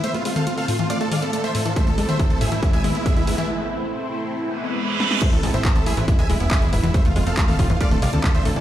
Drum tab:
CC |----------------|----------------|----------------|x---------------|
HH |xxoxxooxxxoxxxox|xxoxxxoxxxoxxxox|----------------|xxoxxxoxxxoxxxox|
CP |----------------|----------------|----------------|----x-------x---|
SD |----------------|----------------|--------------oo|----------------|
T2 |---o------o-----|---o------o-----|----------------|----------------|
BD |----------------|o---o---o---o---|----------------|o---o---o---o---|

CC |----------------|
HH |xxoxxooxxxoxxxox|
CP |----x-------x---|
SD |----------------|
T2 |-----o-----o----|
BD |o---o-o-o---o---|